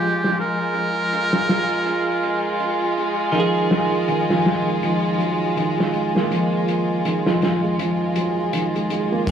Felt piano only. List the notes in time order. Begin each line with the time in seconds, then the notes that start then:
3.34 F3
4.08 D#3
4.29 F2
4.67 G#3
4.82 F3
5.19 F#3
5.56 D#3
5.78 G#3
5.93 G#3
6.15 A#3
6.30 F3
7.05 D#3
7.27 F2
7.63 G#3
7.79 F3
8.16 F#3
8.53 D#3
8.75 G#3
8.90 G#3
9.12 A#3
9.27 F3